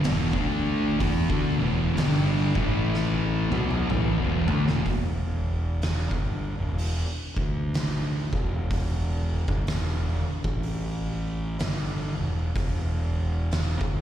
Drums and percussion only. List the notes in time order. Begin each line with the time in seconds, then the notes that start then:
0.04 snare, open hi-hat
0.33 kick
1.00 kick, open hi-hat
1.30 kick
1.97 snare, open hi-hat
2.55 kick
2.94 snare
3.52 mid tom
3.71 mid tom
3.90 mid tom
4.48 floor tom
4.68 snare
4.86 kick, open hi-hat
5.82 snare, open hi-hat
6.11 kick
6.78 open hi-hat
7.37 kick
7.74 snare, open hi-hat
8.33 kick
8.71 kick, open hi-hat
9.48 kick
9.67 snare, open hi-hat
10.44 kick
10.63 open hi-hat
11.59 snare, open hi-hat
12.56 kick, open hi-hat
13.51 snare, open hi-hat
13.81 kick